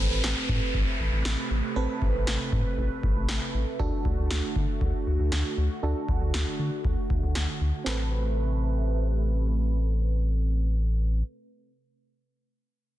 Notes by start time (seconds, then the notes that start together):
Already playing: C3 A3 C4 A4 B4, downlifter
0.11 A1
0.24 A1, snare
0.49 A2, kick
0.74 A1, kick
1.00 A1
1.12 A1
1.25 A1, snare
1.51 A1
1.76 A1 C4 A4 B4
2.02 A1, kick
2.14 A1
2.27 A1, snare
2.52 A2, kick
2.78 A1
3.03 A1, kick
3.16 A1
3.29 A1, snare
3.54 A1
3.79 D2 D3 D4 F#4 A4, kick
4.05 D2, kick
4.18 D2
4.30 D2, snare
4.56 D3, kick
4.81 D2, kick
5.07 D2
5.19 D2
5.32 D2, snare
5.58 D2
5.83 D2 D4 F#4 A4
6.09 D2, kick
6.21 D2
6.34 D2, snare
6.59 D3
6.85 D2, kick
7.10 D2, kick
7.23 D2
7.35 D2, snare
7.61 D2
7.84 A1 C3 A3 C4 A4 B4, snare